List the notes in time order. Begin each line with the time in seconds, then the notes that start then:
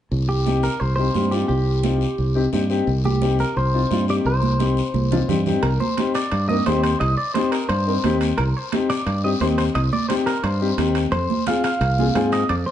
0.11 C2, high conga, long guiro
0.29 G4
0.46 C4 D#4 G4, high conga, short guiro
0.63 A#4, short guiro
0.80 C2 C5, high conga, long guiro
0.96 C4 D#4 G4 C5
1.14 G2 C4 D#4 G4, high conga, short guiro
1.31 C4 D#4 F4 G4, short guiro
1.48 C2 G4, high conga, long guiro
1.83 C4 D#4 F4, high conga, short guiro
2.01 short guiro
2.18 C2, high conga, long guiro
2.35 C4 D#4 G4
2.53 G2 C4 D#4 G4, high conga, short guiro
2.70 C4 D#4 G4, short guiro
2.87 C2, high conga, long guiro
3.05 G4, high conga
3.22 C4 D#4 G4, high conga, short guiro
3.39 A#4, short guiro
3.56 C2 C5, high conga, long guiro
3.73 C4 D#4 F4
3.91 G2 C4 D#4 F4, high conga, short guiro
4.08 C4 D#4 G4 D5, short guiro
4.25 C2 C5, high conga, long guiro
4.42 high conga
4.59 C4 D#4 G4, high conga, short guiro
4.77 short guiro
4.94 C2, high conga, long guiro
5.11 C4 D#4 F4, low conga
5.28 G2 C4 D#4 G4, low conga, short guiro
5.46 C4 D#4 G4, low conga, short guiro
5.63 C2 A#4, high conga, high timbale, long guiro
5.80 C5, high conga
5.97 C4 D#4 G4, high conga, high timbale, short guiro
6.15 D5, high timbale, short guiro
6.32 G2, high conga, high timbale, long guiro
6.49 C4 D#4 A#4 D#5, high conga
6.66 D#2 C4 D#4 G4 C5, high conga, high timbale, low timbale, short guiro
6.83 C5, high timbale, short guiro
7.00 C2 D#5, high conga, high timbale, long guiro
7.17 D5
7.34 C4 D#4 G4 C5, high conga, high timbale, short guiro
7.51 A#4, high timbale, short guiro
7.69 G2 C5, high conga, high timbale, long guiro
7.86 C4 D#4 A#4
8.04 D#2 C4 D#4 G4, high conga, high timbale, short guiro
8.21 high timbale, short guiro
8.38 C2 A#4, high conga, high timbale, long guiro
8.57 C5
8.72 C4 D#4 G4, high conga, high timbale, short guiro
8.90 D5, high timbale, short guiro
9.06 G2, high conga, high timbale, long guiro
9.24 C4 D#4 G4 D#5
9.40 D#2 C4 D#4 G4 C5, high conga, high timbale, short guiro
9.58 C5, high timbale, short guiro
9.75 C2 D#5, high conga, high timbale, long guiro
9.93 D5, high conga
10.09 C4 D#4 G4 C5, high conga, high timbale, short guiro
10.26 A#4, high timbale, short guiro
10.43 G2 C5, high conga, high timbale, long guiro
10.61 C4 D#4 G4
10.77 D#2 C4 D#4 G4, high conga, high timbale, short guiro
10.95 high timbale, short guiro
11.12 F2 C5, high conga, high timbale, long guiro
11.30 high conga
11.46 C4 F4 G#4 F5, high conga, high timbale, short guiro
11.64 F5, high timbale, short guiro
11.80 C2, high conga, high timbale, long guiro
11.99 C4 F4 G#4, high conga
12.15 G#2 C4 F4 G#4, high conga, high timbale, low timbale, short guiro
12.32 D#5, high timbale, short guiro
12.49 F2 D5, high conga, high timbale, long guiro
12.66 C5